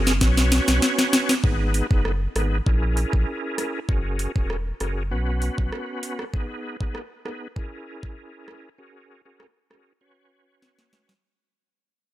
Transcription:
0.00 0.23 F#1 medium
0.00 0.13 C#4 medium
0.00 0.13 F#4 medium
0.00 0.13 G#4 medium
0.00 0.13 A#4 medium
0.07 snare medium
0.07 shaker medium
0.21 0.60 B1 loud
0.21 1.34 C#4 medium
0.21 1.35 F#4 medium
0.21 1.35 B4 medium
0.21 1.35 C#5 loud
0.21 kick loud
0.21 snare medium
0.21 shaker medium
0.37 snare medium
0.37 shaker medium
0.52 snare loud
0.52 closed hi-hat medium
0.52 shaker medium
0.68 0.80 B1 medium
0.68 snare medium
0.68 shaker medium
0.82 snare medium
0.82 shaker medium
0.99 snare medium
0.99 shaker soft
1.13 snare loud
1.13 closed hi-hat medium
1.13 shaker medium
1.29 snare loud
1.29 shaker medium
1.44 1.82 G#1 loud
1.44 1.87 B3 medium
1.44 1.87 D#4 medium
1.44 1.87 G#4 medium
1.44 1.87 B4 medium
1.44 kick loud
1.74 closed hi-hat medium
1.90 2.28 F#1 loud
1.90 2.12 B3 medium
1.90 2.12 D#4 medium
1.90 2.12 G#4 medium
1.90 2.12 B4 medium
1.90 kick medium
2.05 cross-stick medium
2.36 2.61 G#1 loud
2.36 2.58 B3 medium
2.36 2.58 D#4 medium
2.36 2.58 G#4 medium
2.36 2.58 B4 medium
2.36 cross-stick medium
2.36 closed hi-hat medium
2.66 3.05 A#1 loud
2.66 3.79 C#4 medium
2.66 3.80 E4 medium
2.66 3.80 G#4 medium
2.66 3.80 A#4 loud
2.66 kick medium
2.97 closed hi-hat medium
3.13 3.25 A#1 medium
3.13 kick medium
3.58 cross-stick medium
3.58 closed hi-hat medium
3.89 4.27 F#1 loud
3.89 4.32 C#4 medium
3.89 4.32 F#4 medium
3.89 4.32 G#4 medium
3.89 4.32 A#4 medium
3.89 kick loud
4.19 closed hi-hat medium
4.36 4.73 E1 medium
4.36 4.57 C#4 medium
4.36 4.57 F#4 medium
4.36 4.57 G#4 medium
4.36 4.57 A#4 medium
4.36 kick medium
4.50 cross-stick medium
4.80 5.13 F#1 medium
4.80 5.03 C#4 medium
4.80 5.03 F#4 medium
4.80 5.03 G#4 medium
4.80 5.03 A#4 medium
4.80 cross-stick medium
4.80 closed hi-hat medium
5.11 5.50 B1 loud
5.11 6.24 B3 medium
5.11 6.24 C#4 medium
5.11 6.25 F#4 medium
5.11 6.25 B4 loud
5.42 closed hi-hat medium
5.58 5.70 B1 medium
5.58 kick medium
5.72 cross-stick medium
6.03 closed hi-hat medium
6.19 cross-stick medium
6.33 6.76 B3 medium
6.33 6.77 D#4 medium
6.33 6.77 G#4 medium
6.33 6.77 B4 loud
6.33 kick loud
6.80 7.02 B3 medium
6.80 7.02 D#4 medium
6.80 7.02 G#4 medium
6.80 7.02 B4 medium
6.80 kick medium
6.95 cross-stick medium
7.25 7.48 B3 medium
7.25 7.48 D#4 medium
7.25 7.48 G#4 medium
7.25 7.48 B4 medium
7.25 cross-stick medium
7.56 8.69 C#4 medium
7.56 8.69 E4 medium
7.56 8.69 G#4 medium
7.56 8.69 A#4 loud
7.56 kick medium
8.03 kick medium
8.48 cross-stick medium
8.78 9.21 C#4 medium
8.78 9.21 F#4 medium
8.78 9.22 G#4 medium
8.78 9.22 A#4 loud
9.25 9.47 C#4 medium
9.25 9.47 F#4 medium
9.25 9.47 G#4 medium
9.25 9.47 A#4 medium
9.40 cross-stick medium
9.70 9.93 C#4 medium
9.70 9.93 F#4 medium
9.70 9.93 G#4 medium
9.70 9.93 A#4 medium
9.70 cross-stick medium
10.01 11.14 C#4 medium
10.01 11.14 F#4 medium
10.01 11.14 B4 medium
10.01 11.14 C#5 loud
10.62 snare medium
10.79 snare medium
10.93 snare medium
11.09 snare medium

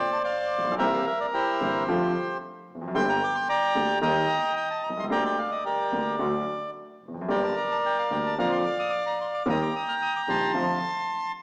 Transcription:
0.00 0.22 C5 medium
0.00 0.23 D5 medium
0.00 0.11 G5 medium
0.13 0.18 A5 medium
0.24 0.75 C5 medium
0.24 0.75 D5 medium
0.24 0.75 F5 medium
0.52 0.78 A#1 medium
0.58 0.65 A1 soft
0.64 0.71 A#1 medium
0.71 0.78 B1 medium
0.78 1.01 C2 loud
0.78 1.02 C2 medium
0.78 1.02 C3 medium
0.78 1.01 E3 medium
0.78 1.02 A#3 medium
0.78 1.02 C4 medium
0.78 1.02 G4 medium
0.78 1.83 A#4 medium
0.78 1.05 E5 medium
0.78 0.85 G5 loud
0.93 1.07 F5 medium
1.07 1.19 E5 medium
1.20 1.26 D5 medium
1.34 1.84 E4 medium
1.34 2.37 G4 medium
1.34 2.38 C5 medium
1.60 1.83 G1 medium
1.60 1.83 G2 medium
1.60 1.83 E3 soft
1.60 1.83 A#3 soft
1.60 1.83 C4 soft
1.60 1.84 G4 medium
1.86 2.09 F2 loud
1.86 2.10 F2 medium
1.86 2.11 D3 medium
1.86 2.11 F3 medium
1.86 2.11 A3 medium
1.86 2.11 C4 medium
1.86 2.11 F4 medium
2.68 2.94 F1 medium
2.75 2.81 E2 soft
2.81 2.88 F2 medium
2.88 2.94 F#2 medium
2.94 3.17 G1 medium
2.94 3.17 G1 loud
2.94 3.17 G2 medium
2.94 3.17 D3 medium
2.94 3.17 G3 medium
2.94 3.17 A#3 medium
2.94 3.17 G4 medium
2.94 3.48 G5 medium
2.94 3.07 C6 loud
3.09 3.22 A#5 loud
3.24 3.36 D6 loud
3.35 3.49 C6 loud
3.49 3.99 D5 medium
3.49 3.99 G5 medium
3.49 3.99 A#5 loud
3.75 3.98 D2 medium
3.75 3.98 D3 medium
3.75 3.98 G3 soft
3.75 3.98 A#3 soft
3.75 3.98 G4 medium
4.01 4.25 D#2 loud
4.01 4.25 D#2 medium
4.01 4.25 D#3 medium
4.01 4.25 G3 medium
4.01 4.25 A#3 medium
4.01 4.25 G4 medium
4.01 5.06 D#5 medium
4.01 4.55 G5 medium
4.01 4.52 A#5 loud
4.56 4.69 G5 medium
4.70 4.83 A5 medium
4.83 5.10 C2 medium
4.83 4.89 A#5 medium
4.90 4.96 B1 soft
4.97 5.03 C2 medium
4.97 5.05 C6 medium
5.04 5.10 C#2 medium
5.10 5.33 D2 medium
5.10 5.33 D3 medium
5.10 5.33 G3 medium
5.10 5.33 A#3 medium
5.10 5.33 G4 medium
5.10 5.65 D5 medium
5.10 5.24 G5 medium
5.10 5.24 A#5 loud
5.26 5.39 G5 medium
5.38 5.50 F5 medium
5.51 5.64 D#5 medium
5.65 6.15 G4 medium
5.65 6.16 A#4 medium
5.65 6.71 D5 medium
5.92 6.15 D2 medium
5.92 6.15 D3 medium
5.92 6.14 G3 soft
5.92 6.15 A#3 soft
5.92 6.15 G4 soft
6.19 6.42 D2 medium
6.19 6.42 D3 medium
6.19 6.42 F#3 medium
6.19 6.42 A3 medium
6.19 6.42 F#4 medium
7.01 7.28 F1 medium
7.08 7.15 E2 soft
7.14 7.21 F2 medium
7.21 7.28 F#2 medium
7.28 7.52 G1 medium
7.28 7.52 G2 medium
7.28 7.52 D3 medium
7.28 7.52 G3 medium
7.28 7.52 A#3 medium
7.28 7.52 G4 medium
7.28 8.35 A#4 medium
7.28 8.35 D5 medium
7.28 7.42 G5 medium
7.43 7.56 A5 medium
7.57 7.63 A#5 medium
7.71 7.77 A5 medium
7.86 7.97 G5 medium
7.99 8.12 F5 medium
8.11 8.34 D2 medium
8.11 8.34 D3 medium
8.11 8.34 G3 soft
8.11 8.34 A#3 soft
8.11 8.34 G4 medium
8.11 8.18 G5 medium
8.26 8.38 A5 medium
8.38 8.61 F2 medium
8.38 8.61 D3 medium
8.38 8.61 F3 medium
8.38 8.61 A#3 medium
8.38 8.61 F4 medium
8.38 9.43 D5 medium
8.38 9.43 F5 medium
8.38 8.51 A#5 medium
8.52 8.58 C6 medium
8.66 8.78 D6 medium
8.79 8.92 D#6 medium
8.90 9.05 D6 medium
9.06 9.19 A#5 medium
9.21 9.27 C6 medium
9.34 9.47 D6 medium
9.46 9.69 D#2 medium
9.46 9.69 D#2 loud
9.46 9.69 D#3 medium
9.46 9.69 G3 medium
9.46 9.69 A#3 medium
9.46 9.69 G4 medium
9.46 10.52 G5 medium
9.46 10.52 A#5 medium
9.50 9.62 D#6 loud
9.62 9.74 D6 medium
9.76 9.89 D#6 medium
9.89 9.94 F6 medium
10.02 10.14 D#6 loud
10.16 10.22 D6 medium
10.28 10.50 A#1 medium
10.28 10.50 A#2 medium
10.28 10.50 D#3 medium
10.28 10.50 G3 soft
10.28 10.51 A#3 soft
10.28 10.51 G4 medium
10.28 11.32 A5 medium
10.28 11.32 C6 loud
10.54 10.77 F2 medium
10.54 10.77 F2 loud
10.54 10.76 D3 medium
10.54 10.77 F3 medium
10.54 10.77 A3 medium
10.54 10.77 C4 medium
10.54 10.77 F4 medium

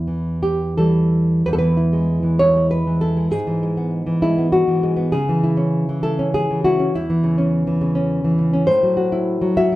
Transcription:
0.00 1.44 E2 soft
0.00 1.10 E4 medium
0.08 0.77 E3 soft
0.43 0.77 G4 soft
0.78 1.44 E3 soft
0.78 1.44 G3 soft
0.78 1.45 A4 soft
1.46 3.30 E2 soft
1.46 1.53 B4 medium
1.53 1.58 A4 medium
1.58 2.22 E3 soft
1.58 2.37 B4 medium
1.77 2.39 E4 soft
1.93 2.55 G#3 soft
2.23 2.86 E3 soft
2.39 3.00 E4 soft
2.39 2.70 C#5 medium
2.56 3.16 G#3 soft
2.71 3.01 B4 medium
2.87 3.34 E3 soft
3.01 3.33 E4 soft
3.01 3.31 A4 medium
3.17 3.33 G#3 soft
3.32 5.10 G#2 soft
3.32 3.90 G#4 medium
3.47 4.05 E3 soft
3.63 4.21 G#3 soft
3.77 4.37 B3 soft
4.07 4.66 E3 soft
4.22 4.82 G#3 soft
4.22 4.52 E4 medium
4.38 4.95 B3 soft
4.52 5.11 F#4 medium
4.68 5.14 E3 soft
4.83 5.14 G#3 soft
4.97 5.13 B3 soft
5.12 6.90 C#3 medium
5.12 5.99 G#4 medium
5.29 5.88 E3 soft
5.44 6.02 E4 soft
5.57 6.18 C#4 soft
5.89 6.49 E3 soft
6.03 6.64 E4 soft
6.03 6.33 A4 medium
6.19 6.78 C#4 soft
6.34 6.63 G#4 medium
6.50 6.95 E3 soft
6.64 6.94 E4 soft
6.64 6.93 F#4 medium
6.79 6.94 C#4 soft
6.95 8.65 E2 soft
6.95 7.50 E4 medium
7.10 7.66 E3 soft
7.24 7.80 C#3 soft
7.38 7.94 C#4 soft
7.67 8.23 E3 soft
7.81 8.37 C#3 soft
7.95 8.52 C#4 soft
8.24 8.68 E3 soft
8.39 8.67 C#3 soft
8.53 8.68 C#4 soft
8.67 9.76 A2 medium
8.67 9.54 C5 medium
8.83 9.40 F#3 soft
8.97 9.56 F#4 soft
9.12 9.71 E4 soft
9.41 9.76 F#3 soft
9.57 9.76 F#4 soft
9.57 9.76 E5 medium
9.72 9.76 E4 soft

